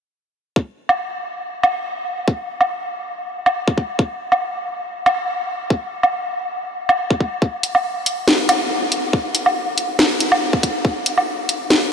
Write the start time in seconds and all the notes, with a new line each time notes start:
0.56 kick
0.89 low woodblock
1.63 low woodblock
2.28 kick
2.61 low woodblock
3.46 low woodblock
3.68 kick
3.78 kick
3.99 kick
4.32 low woodblock
5.06 low woodblock
5.70 kick
6.03 low woodblock
6.89 low woodblock
7.10 kick
7.20 kick
7.42 kick
7.63 closed hi-hat
7.75 low woodblock
8.06 closed hi-hat
8.28 snare
8.49 closed hi-hat, low woodblock
8.92 closed hi-hat
9.13 kick
9.35 closed hi-hat
9.46 low woodblock
9.78 closed hi-hat
9.99 snare
10.20 closed hi-hat
10.32 low woodblock
10.53 kick
10.63 kick, closed hi-hat
10.85 kick
11.06 closed hi-hat
11.18 low woodblock
11.49 closed hi-hat
11.70 snare